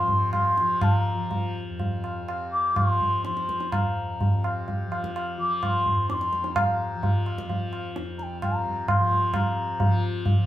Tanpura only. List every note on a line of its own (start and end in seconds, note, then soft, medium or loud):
0.00 1.68 F2 medium
0.00 0.05 C3 medium
0.00 0.60 F3 medium
0.05 2.21 C3 medium
0.60 1.14 F3 medium
1.14 2.74 F3 medium
1.69 3.80 F2 medium
2.22 4.33 C3 medium
2.74 3.26 F3 medium
3.26 4.86 F3 medium
3.81 5.91 F2 medium
4.33 6.41 C3 medium
4.86 5.37 F3 medium
5.37 6.94 F3 medium
5.91 7.96 F2 medium
6.42 8.48 C3 medium
6.94 7.45 F3 medium
7.45 8.98 F3 medium
7.96 10.46 F2 medium
8.48 9.33 C3 medium
8.98 9.84 F3 medium
9.33 10.46 C3 medium
9.84 10.34 F3 medium
10.34 10.46 F3 medium